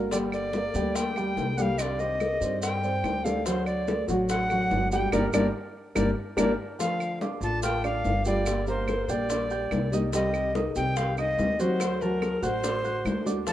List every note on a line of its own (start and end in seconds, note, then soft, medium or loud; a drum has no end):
0.00 0.68 G1 medium
0.00 0.11 A3 medium
0.00 0.11 D4 medium
0.00 0.11 F#4 medium
0.11 0.52 D3 medium
0.11 0.52 G3 medium
0.11 0.47 G3 medium
0.11 0.53 A#3 medium
0.11 0.53 D4 medium
0.11 0.46 G4 medium
0.11 0.53 A4 medium
0.11 0.17 D5 medium
0.11 0.47 G5 medium
0.11 high bongo medium
0.11 high conga soft
0.11 maracas medium
0.32 0.97 D5 loud
0.32 high conga soft
0.32 claves medium
0.32 maracas soft
0.53 0.72 A#3 medium
0.53 0.72 A#4 medium
0.53 0.72 D5 medium
0.53 muted nylon-string guitar stroke medium
0.53 high bongo medium
0.53 high conga loud
0.53 maracas soft
0.74 1.33 D2 medium
0.74 0.93 G3 medium
0.74 1.09 G3 medium
0.74 0.94 A#3 medium
0.74 0.94 D4 medium
0.74 1.09 G4 medium
0.74 0.94 A4 medium
0.74 1.10 G5 medium
0.74 high bongo soft
0.74 maracas medium
0.94 1.36 G3 soft
0.94 1.36 A#3 medium
0.94 1.36 D4 medium
0.94 1.36 A4 medium
0.94 1.59 G5 loud
0.94 high bongo medium
0.94 high conga soft
0.94 maracas medium
1.16 1.51 G3 medium
1.16 1.51 G4 medium
1.16 1.51 G5 medium
1.16 high bongo soft
1.16 high conga soft
1.16 claves medium
1.16 maracas soft
1.37 2.35 C2 medium
1.37 1.57 G3 soft
1.37 1.57 A#3 medium
1.37 1.56 D4 medium
1.37 1.56 A4 medium
1.37 high bongo soft
1.37 low bongo medium
1.37 high conga medium
1.37 maracas soft
1.57 1.78 G3 medium
1.57 1.93 G3 medium
1.57 1.78 A#3 medium
1.57 1.78 D4 medium
1.57 1.93 G4 medium
1.57 1.78 A4 medium
1.57 1.63 F#5 medium
1.57 1.93 G5 medium
1.57 high bongo soft
1.57 high conga medium
1.57 maracas medium
1.62 1.80 F5 medium
1.78 2.19 C3 medium
1.78 2.19 D#3 medium
1.78 2.20 G3 medium
1.78 2.20 D4 medium
1.78 2.20 G4 medium
1.78 2.01 D5 medium
1.78 1.83 D#5 medium
1.78 high bongo medium
1.78 high conga soft
1.78 claves medium
1.78 maracas medium
1.99 2.34 C4 medium
1.99 2.34 C5 medium
1.99 2.62 D#5 loud
1.99 2.35 D6 medium
1.99 high conga soft
1.99 maracas soft
2.20 muted nylon-string guitar stroke medium
2.20 high bongo medium
2.20 high conga medium
2.20 claves medium
2.20 maracas soft
2.41 3.00 G2 medium
2.41 2.61 D#3 medium
2.41 2.61 G3 medium
2.41 2.76 C4 medium
2.41 2.61 D4 medium
2.41 2.61 G4 medium
2.41 2.76 C5 medium
2.41 2.76 D5 medium
2.41 high bongo soft
2.41 high conga soft
2.41 maracas medium
2.62 3.03 D#3 soft
2.62 3.03 G3 medium
2.62 3.04 D4 soft
2.62 3.04 G4 medium
2.62 3.26 G5 medium
2.62 high bongo medium
2.62 high conga soft
2.62 maracas medium
2.84 3.18 C4 medium
2.84 3.18 C5 medium
2.84 3.18 D5 medium
2.84 high bongo soft
2.84 high conga soft
2.84 maracas soft
3.04 4.02 D2 medium
3.04 3.25 D#3 medium
3.04 3.24 G3 soft
3.04 3.24 D4 soft
3.04 3.23 G4 medium
3.04 high bongo soft
3.04 low bongo medium
3.04 high conga medium
3.04 claves medium
3.04 maracas soft
3.24 3.44 D#3 medium
3.24 3.45 G3 medium
3.24 3.42 A3 medium
3.24 3.45 D4 medium
3.24 3.45 G4 medium
3.24 3.43 A4 medium
3.24 3.43 D5 medium
3.24 3.47 F5 medium
3.24 high bongo soft
3.24 high conga medium
3.24 maracas medium
3.45 3.86 D3 medium
3.45 3.80 F#3 medium
3.45 3.87 A3 medium
3.45 3.87 D4 medium
3.45 3.87 F#4 medium
3.45 3.81 F#4 medium
3.45 3.66 C5 medium
3.45 3.81 F#5 medium
3.45 high bongo medium
3.45 maracas medium
3.66 4.05 D5 medium
3.66 high conga soft
3.66 claves medium
3.66 maracas soft
3.87 4.05 A3 medium
3.87 4.05 A4 medium
3.87 4.05 D5 medium
3.87 muted nylon-string guitar stroke medium
3.87 high bongo medium
3.87 high conga loud
3.87 maracas soft
4.08 4.67 A1 medium
4.08 4.43 F#3 medium
4.08 4.29 A3 medium
4.08 4.29 D4 medium
4.08 4.28 F#4 medium
4.08 4.44 F#4 medium
4.08 4.44 F#5 medium
4.08 high bongo soft
4.08 maracas medium
4.29 4.70 D3 medium
4.29 4.71 A3 medium
4.29 4.71 D4 medium
4.29 4.71 F#4 medium
4.29 4.88 F#5 loud
4.29 high bongo medium
4.29 high conga soft
4.29 maracas medium
4.50 4.85 F#3 medium
4.50 4.85 F#4 medium
4.50 4.86 F#5 medium
4.50 high bongo soft
4.50 high conga soft
4.50 claves medium
4.50 maracas soft
4.71 5.10 G1 medium
4.71 4.91 D3 medium
4.71 4.92 A3 medium
4.71 4.92 D4 medium
4.71 4.91 F#4 medium
4.71 high bongo soft
4.71 low bongo medium
4.71 high conga medium
4.71 maracas soft
4.92 5.09 G3 medium
4.92 5.13 A3 medium
4.92 5.12 D4 medium
4.92 5.12 F#4 medium
4.92 5.10 G4 medium
4.92 5.11 G5 medium
4.92 5.10 G5 medium
4.92 high bongo soft
4.92 high conga medium
4.92 maracas medium
5.12 5.28 G1 medium
5.12 5.26 G3 medium
5.12 5.26 A#3 medium
5.12 5.26 D4 medium
5.12 5.26 G4 medium
5.12 5.26 A#4 loud
5.12 5.26 D5 loud
5.12 low bongo medium
5.12 high conga medium
5.12 claves medium
5.12 maracas loud
5.33 5.49 G1 medium
5.33 5.47 G3 medium
5.33 5.47 A#3 medium
5.33 5.47 D4 medium
5.33 5.47 G4 medium
5.33 5.47 A#4 medium
5.33 5.47 D5 medium
5.33 low bongo loud
5.33 high conga medium
5.33 claves loud
5.33 maracas medium
5.95 6.12 G1 medium
5.95 6.10 G3 medium
5.95 6.10 A#3 medium
5.95 6.09 D4 medium
5.95 6.09 G4 medium
5.95 6.09 A#4 medium
5.95 6.10 D5 medium
5.95 low bongo loud
5.95 high conga loud
5.95 claves loud
5.95 maracas medium
6.37 6.53 G1 medium
6.37 6.52 G3 loud
6.37 6.52 A#3 medium
6.37 6.51 D4 loud
6.37 6.52 D4 medium
6.37 6.51 G4 medium
6.37 6.51 A#4 loud
6.37 6.52 D5 medium
6.37 low bongo loud
6.37 high conga medium
6.37 claves loud
6.37 maracas loud
6.79 7.20 D3 medium
6.79 7.14 F3 medium
6.79 7.21 A3 medium
6.79 7.21 D4 medium
6.79 7.14 F4 medium
6.79 7.21 F4 medium
6.79 7.14 F5 medium
6.79 7.19 F5 medium
6.79 high bongo medium
6.79 high conga soft
6.79 maracas medium
7.00 high conga soft
7.00 claves medium
7.00 maracas soft
7.21 7.56 D4 medium
7.21 7.56 D5 medium
7.21 7.56 D6 medium
7.21 muted nylon-string guitar stroke medium
7.21 high bongo medium
7.21 high conga medium
7.21 maracas soft
7.41 8.00 A1 medium
7.41 7.63 A3 medium
7.41 7.63 D4 medium
7.41 7.63 F4 medium
7.41 7.63 A5 medium
7.41 high bongo soft
7.41 maracas medium
7.62 8.03 D3 medium
7.62 8.04 A3 medium
7.62 8.04 D4 medium
7.62 7.80 F4 medium
7.62 8.05 F4 medium
7.62 7.80 F5 medium
7.62 7.83 G5 medium
7.62 7.80 F6 medium
7.62 high bongo medium
7.62 high conga soft
7.62 maracas medium
7.84 8.18 D4 medium
7.84 8.18 D5 medium
7.84 8.23 F5 medium
7.84 8.19 D6 medium
7.84 high bongo soft
7.84 high conga soft
7.84 claves medium
7.84 maracas soft
8.04 9.03 G1 medium
8.04 8.25 D3 medium
8.04 8.25 A3 soft
8.04 8.25 D4 medium
8.04 8.24 F4 medium
8.04 high bongo soft
8.04 low bongo medium
8.04 high conga medium
8.04 maracas soft
8.25 8.60 G3 medium
8.25 8.47 A3 medium
8.25 8.46 D4 medium
8.25 8.46 F4 medium
8.25 8.61 G4 medium
8.25 8.65 D5 medium
8.25 8.61 G5 medium
8.25 high bongo soft
8.25 maracas medium
8.46 8.88 D3 medium
8.46 8.88 G3 medium
8.46 8.88 A#3 medium
8.46 8.88 D4 medium
8.46 8.88 G4 medium
8.46 high bongo medium
8.46 high conga soft
8.46 claves medium
8.46 maracas medium
8.67 9.02 A#3 medium
8.67 9.02 A#4 medium
8.67 9.12 C5 medium
8.67 9.02 A#5 medium
8.67 high conga soft
8.67 maracas soft
8.88 muted nylon-string guitar stroke medium
8.88 high bongo medium
8.88 high conga medium
8.88 claves medium
8.88 maracas soft
9.08 9.67 A#1 medium
9.08 9.28 G3 medium
9.08 9.29 A#3 medium
9.08 9.30 D4 medium
9.08 9.29 G4 medium
9.08 9.26 G4 medium
9.08 9.93 D5 loud
9.08 9.27 G5 medium
9.08 9.27 G6 medium
9.08 high bongo soft
9.08 high conga soft
9.08 maracas medium
9.30 9.70 G3 soft
9.30 9.71 A#3 medium
9.30 9.48 D4 medium
9.30 9.71 D4 medium
9.30 9.71 G4 medium
9.30 9.48 D5 medium
9.30 9.48 D6 medium
9.30 high bongo medium
9.30 high conga soft
9.30 maracas medium
9.50 9.85 G4 medium
9.50 9.85 G5 medium
9.50 9.86 G6 medium
9.50 high bongo soft
9.50 high conga soft
9.50 maracas soft
9.71 10.70 C2 medium
9.71 9.92 G3 medium
9.71 9.91 A#3 medium
9.71 9.91 D4 medium
9.71 9.91 G4 medium
9.71 high bongo soft
9.71 low bongo medium
9.71 high conga medium
9.71 claves medium
9.71 maracas soft
9.92 10.13 G3 medium
9.92 10.13 A#3 medium
9.92 10.12 D4 medium
9.92 10.10 D#4 medium
9.92 10.12 G4 medium
9.92 10.10 D#5 medium
9.92 10.10 D#6 medium
9.92 high bongo soft
9.92 high conga medium
9.92 maracas medium
10.13 10.53 C3 medium
10.13 10.54 D#3 medium
10.13 10.54 G3 medium
10.13 10.48 G3 medium
10.13 10.54 C4 medium
10.13 10.54 G4 medium
10.13 10.48 G4 medium
10.13 10.53 D#5 medium
10.13 10.48 G5 medium
10.13 high bongo medium
10.13 high conga soft
10.13 maracas medium
10.34 high conga soft
10.34 claves medium
10.34 maracas soft
10.55 10.90 D#4 medium
10.55 10.90 D#5 medium
10.55 10.90 D#6 medium
10.55 muted nylon-string guitar stroke medium
10.55 high bongo medium
10.55 high conga loud
10.55 maracas soft
10.75 11.34 C2 medium
10.75 10.96 D#3 medium
10.75 10.97 G3 medium
10.75 10.96 C4 medium
10.75 10.96 G4 medium
10.75 10.98 G5 medium
10.75 high bongo soft
10.75 maracas medium
10.96 11.37 D#3 soft
10.96 11.38 G3 medium
10.96 11.38 C4 medium
10.96 11.14 G4 medium
10.96 11.39 G4 medium
10.96 11.18 F5 medium
10.96 11.14 G5 medium
10.96 11.15 G6 medium
10.96 high bongo medium
10.96 high conga soft
10.96 maracas medium
11.17 11.52 D#4 medium
11.17 11.52 D#5 medium
11.17 11.61 D#5 loud
11.17 11.52 D#6 medium
11.17 high bongo soft
11.17 high conga soft
11.17 claves medium
11.17 maracas soft
11.38 12.36 D2 medium
11.38 11.59 D#3 soft
11.38 11.59 G3 medium
11.38 11.59 C4 medium
11.38 11.58 G4 medium
11.38 high bongo soft
11.38 low bongo medium
11.38 high conga medium
11.38 maracas soft
11.59 11.79 D#3 medium
11.59 11.94 F#3 medium
11.59 11.80 G3 medium
11.59 11.80 C4 medium
11.59 11.94 F#4 medium
11.59 11.79 G4 medium
11.59 12.03 C5 medium
11.59 11.94 F#5 medium
11.59 high bongo soft
11.59 maracas medium
11.80 12.21 D3 medium
11.80 12.21 A3 medium
11.80 12.21 D4 medium
11.80 12.22 F#4 medium
11.80 high bongo medium
11.80 high conga soft
11.80 claves medium
11.80 maracas medium
12.01 12.36 F#3 medium
12.01 12.36 F#4 medium
12.01 12.45 A#4 medium
12.01 12.36 A5 medium
12.01 high conga soft
12.01 maracas soft
12.22 muted nylon-string guitar stroke medium
12.22 high bongo medium
12.22 high conga medium
12.22 claves medium
12.22 maracas soft
12.42 13.01 A1 loud
12.42 12.63 A3 medium
12.42 12.63 D4 medium
12.42 12.62 F#4 medium
12.42 12.60 F#4 medium
12.42 13.27 C5 loud
12.42 12.60 F#5 medium
12.42 12.60 F#6 medium
12.42 high bongo soft
12.42 high conga soft
12.42 maracas medium
12.64 13.04 D3 medium
12.64 13.04 A3 medium
12.64 12.81 D4 medium
12.64 13.05 D4 medium
12.64 13.05 F#4 medium
12.64 12.81 D5 medium
12.64 12.81 D6 medium
12.64 high bongo medium
12.64 high conga soft
12.64 maracas medium
12.84 13.18 F#4 medium
12.84 13.19 F#5 medium
12.84 13.19 F#6 medium
12.84 high bongo soft
12.84 high conga soft
12.84 maracas soft
13.05 13.53 D2 medium
13.05 13.25 D3 soft
13.05 13.25 A3 medium
13.05 13.25 D4 medium
13.05 13.24 F#4 medium
13.05 high bongo soft
13.05 low bongo medium
13.05 high conga medium
13.05 claves medium
13.05 maracas soft
13.25 13.46 A3 medium
13.25 13.46 D4 medium
13.25 13.43 D4 medium
13.25 13.46 F#4 medium
13.25 13.43 D5 medium
13.25 13.43 D6 medium
13.25 high bongo soft
13.25 high conga medium
13.25 maracas medium
13.47 13.53 D3 medium
13.47 13.53 F3 medium
13.47 13.53 A3 medium
13.47 13.53 D4 medium
13.47 13.53 F4 medium
13.47 13.53 F5 medium
13.47 13.53 A5 loud
13.47 high bongo medium
13.47 high conga soft
13.47 maracas medium